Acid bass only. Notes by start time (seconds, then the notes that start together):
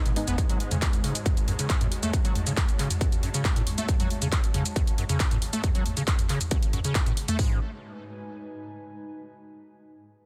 0.06 B2
0.28 B3
0.38 F#2
0.50 F#3
0.72 C#3
0.82 F#2
1.04 C#3
1.26 F#2
1.48 F#2
1.59 C#3
1.70 F#2
1.81 A2
2.03 A3
2.14 F#2
2.25 F#3
2.47 C#3
2.58 F#2
2.79 C#3
3.01 F#2
3.23 F#2
3.34 C#3
3.45 F#2
3.56 A2
3.78 A3
3.89 F#2
4.00 F#3
4.22 C#3
4.32 F#2
4.54 C#3
4.76 F#2
4.98 F#2
5.09 C#3
5.20 F#2
5.31 A2
5.53 A3
5.64 F#2
5.75 F#3
5.97 C#3
6.08 F#2
6.30 C#3
6.52 F#2
6.73 F#2
6.85 C#3
6.95 F#2
7.07 A2
7.29 A3
7.39 G#2